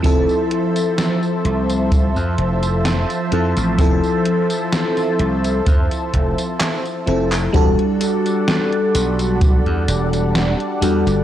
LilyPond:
<<
  \new Staff \with { instrumentName = "Analog synth pad" } { \time 4/4 \key e \phrygian \tempo 4 = 64 <f c'' e'' a''>1~ | <f c'' e'' a''>1 | <g d'' fis'' a''>1 | }
  \new Staff \with { instrumentName = "FM electric piano" } { \time 4/4 \key e \phrygian <f c' e' a'>2.~ <f c' e' a'>8 <f c' e' a'>8 | <f c' e' a'>2.~ <f c' e' a'>8 <f c' e' a'>8 | <g d' fis' a'>2.~ <g d' fis' a'>8 <g d' fis' a'>8 | }
  \new Staff \with { instrumentName = "Slap bass" } { \clef bass \time 4/4 \key e \phrygian f,,16 r4 r16 c,8. f,16 f,,8. r16 f,16 a,,16 | f,,16 r4 r16 c,8 f,16 r16 f,,16 r8. f,,8 | e,,16 r4 r16 b,,8. e,16 e,,8. r16 e,16 g,,16 | }
  \new DrumStaff \with { instrumentName = "Drums" } \drummode { \time 4/4 <hh bd tamb>16 tamb16 hh16 <hh tamb>16 <hh sn tamb>16 tamb16 hh16 <hh tamb>16 <hh bd tamb>16 tamb16 hh16 <hh tamb>16 <hh sn tamb>16 <hh tamb>16 hh16 <hh tamb>16 | <hh bd tamb>16 tamb16 hh16 <hh tamb>16 <hh sn tamb>16 <hh sn tamb>16 hh16 <hh tamb>16 <hh bd tamb>16 <hh tamb>16 <hh bd>16 <hh tamb>16 <hc hh sn tamb>16 <hh tamb>16 hh16 <hc hh tamb>16 | <hh bd tamb>16 hh16 <hh tamb>16 <hh tamb>16 <hh sn tamb>16 hh16 <hh tamb>16 <hh tamb>16 <hh bd tamb>16 hh16 <hh tamb>16 <hh tamb>16 <hh sn tamb>16 hh16 <hh tamb>16 <hh tamb>16 | }
>>